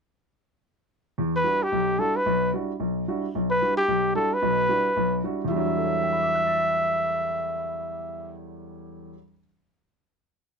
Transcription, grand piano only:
1.18 1.41 E2 medium
1.44 1.62 G3 soft
1.44 1.62 D4 soft
1.44 1.62 E4 soft
1.44 1.62 F#4 medium
1.72 1.95 B1 medium
1.99 2.16 G3 medium
1.99 2.16 D4 soft
1.99 2.16 E4 soft
1.99 2.17 F#4 medium
2.26 2.49 B1 medium
2.54 2.71 G3 medium
2.54 2.71 D4 soft
2.54 2.71 E4 soft
2.54 2.71 F#4 medium
2.80 3.03 B1 medium
3.08 3.25 G3 soft
3.08 3.25 D4 soft
3.08 3.25 E4 soft
3.08 3.25 F#4 medium
3.35 3.58 B1 medium
3.62 3.79 G3 medium
3.62 3.79 D4 soft
3.62 3.79 E4 soft
3.62 3.79 F#4 medium
3.88 4.11 B1 medium
4.15 4.32 G3 medium
4.15 4.33 D4 medium
4.15 4.33 E4 soft
4.15 4.33 F#4 medium
4.42 4.65 B1 medium
4.42 4.65 B2 medium
4.69 4.86 G3 medium
4.69 4.86 D4 soft
4.69 4.87 E4 soft
4.69 4.87 F#4 medium
4.97 5.19 B1 medium
5.24 5.40 G3 soft
5.24 5.41 D4 soft
5.24 5.41 E4 soft
5.24 5.41 F#4 medium
5.44 9.11 E2 medium
5.44 9.12 E3 medium
5.51 9.14 G3 medium
5.51 9.15 D4 medium
5.56 9.17 F#3 medium
5.77 9.10 A4 soft
5.85 9.13 C#5 soft
5.93 9.17 E5 soft
6.02 9.22 G5 soft
6.12 9.27 B5 soft
6.22 9.32 D6 soft
6.35 9.38 F#6 soft
6.47 9.44 A6 soft

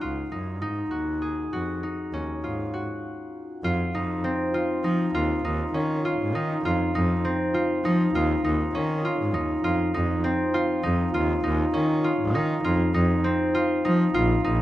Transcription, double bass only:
0.01 0.27 C#2 medium
0.31 0.63 F#2 medium
0.61 0.88 G#2 medium
0.91 1.44 D#2 medium
1.52 1.78 F2 medium
2.12 2.26 D#2 medium
2.43 2.83 G#2 medium
3.63 3.76 F2 medium
3.94 4.20 F2 medium
4.84 5.10 F3 medium
5.14 5.40 D#2 medium
5.43 5.70 D#2 medium
5.74 6.13 D#3 medium
6.19 6.36 G#2 medium
6.34 6.60 D#3 medium
6.65 6.78 F2 loud
6.95 7.21 F2 medium
7.85 8.11 F3 medium
8.14 8.41 D#2 loud
8.44 8.71 D#2 medium
8.75 9.14 D#3 medium
9.20 9.36 G#2 medium
9.35 9.61 D#2 medium
9.64 9.77 F2 medium
9.94 10.21 F2 medium
10.84 11.11 F2 medium
11.15 11.41 D#2 loud
11.45 11.71 D#2 loud
11.75 12.14 D#3 medium
12.20 12.36 G#2 medium
12.35 12.61 D#3 medium
12.64 12.78 F2 loud
12.94 13.21 F2 medium
13.85 14.11 F3 medium
14.14 14.41 A#1 loud
14.45 14.62 A#1 loud

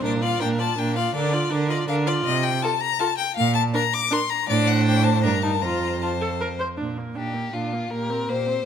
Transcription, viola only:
0.04 0.23 D4 medium
0.22 0.43 F4 medium
0.41 0.60 D4 medium
0.59 0.77 F4 medium
0.78 0.98 D4 medium
0.96 1.14 F4 medium
1.15 1.35 D4 medium
1.33 1.52 F4 medium
1.50 1.70 D4 medium
1.69 1.87 F4 medium
1.88 2.08 D4 medium
2.07 2.25 F4 medium
2.62 2.70 F4 medium
2.99 3.07 F4 medium
3.74 3.82 D4 medium
4.11 4.19 D4 medium
4.49 5.20 D4 medium
5.24 5.43 D4 medium
5.43 5.51 D#4 medium
5.62 6.01 F4 medium
6.02 6.10 F4 medium
6.21 6.29 A4 medium
6.40 6.48 A#4 medium
6.59 6.67 C5 medium
6.78 6.99 D4 soft
6.98 7.17 A#3 soft
7.16 7.36 D4 soft
7.35 7.53 A#3 soft
7.54 7.75 D4 soft
7.73 7.91 A#3 soft
7.92 8.11 A#3 soft
8.10 8.30 C4 soft
8.29 8.48 A#3 soft
8.47 8.64 C4 soft

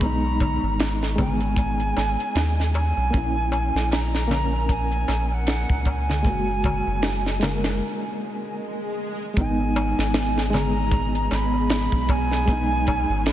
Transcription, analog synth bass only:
0.00 0.58 B1 medium
0.63 1.93 G#1 medium
1.97 2.17 G#1 medium
2.35 2.92 D#2 medium
2.97 3.11 B1 medium
3.14 3.71 A#1 loud
3.75 5.05 A#1 medium
5.08 5.65 A#1 medium
5.69 6.26 C#2 medium
6.25 6.82 F#1 medium
6.87 7.81 F#1 loud
9.37 9.94 G#1 loud
9.98 11.28 G#1 loud
11.31 11.89 G#1 loud
11.93 13.05 B1 medium
13.09 13.32 G#1 loud

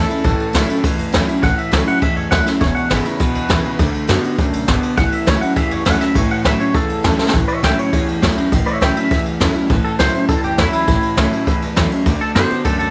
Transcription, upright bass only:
0.24 0.37 A1 loud
0.54 0.66 C#2 loud
0.98 1.10 F#2 loud
1.13 1.25 E2 medium
1.43 1.55 A1 medium
1.72 1.84 C#2 medium
1.87 muted upright bass stroke medium
2.02 2.14 E2 medium
2.16 2.29 F#2 medium
2.32 2.44 D#2 medium
2.61 2.73 E1 loud
2.90 3.03 G#1 medium
3.05 muted upright bass stroke medium
3.20 3.32 B1 medium
3.35 3.47 D2 loud
3.50 3.62 E2 medium
3.64 muted upright bass stroke medium
3.79 3.91 D2 loud
3.94 muted upright bass stroke medium
4.09 4.21 F#2 loud
4.38 4.50 A2 loud
4.53 4.65 B2 loud
4.68 4.80 G#1 medium
4.97 5.09 A1 loud
5.27 5.39 C#2 loud
5.56 5.68 E2 loud
5.71 5.83 F#2 loud
5.86 5.98 E2 medium
6.15 6.27 A1 loud
6.30 muted upright bass stroke medium
6.45 6.57 C#2 loud
6.74 6.86 E2 loud
6.89 7.01 F#2 medium
7.04 7.16 E2 medium
7.18 muted upright bass stroke medium
7.34 7.46 A1 loud
7.63 7.75 C#2 medium
7.93 8.05 E2 loud
8.07 8.19 F#2 medium
8.23 8.34 E2 medium
8.37 muted upright bass stroke medium
8.52 8.64 A1 medium
8.81 8.93 C#2 medium
9.11 9.23 E2 loud
9.26 9.38 F#2 loud
9.41 9.52 E2 medium
9.55 muted upright bass stroke medium
9.70 9.82 A1 loud
9.85 muted upright bass stroke medium
9.99 10.11 C#2 medium
10.29 10.41 E2 medium
10.44 10.56 F#2 loud
10.58 10.70 E2 medium
10.73 muted upright bass stroke medium
10.88 11.00 A1 medium
11.17 11.29 C#2 medium
11.62 11.74 F#2 loud
11.76 11.89 E2 medium
11.92 muted upright bass stroke medium
12.06 12.18 D2 loud
12.21 muted upright bass stroke medium
12.35 12.47 F#2 medium
12.50 muted upright bass stroke medium
12.65 12.77 A2 medium
12.80 12.90 B2 medium

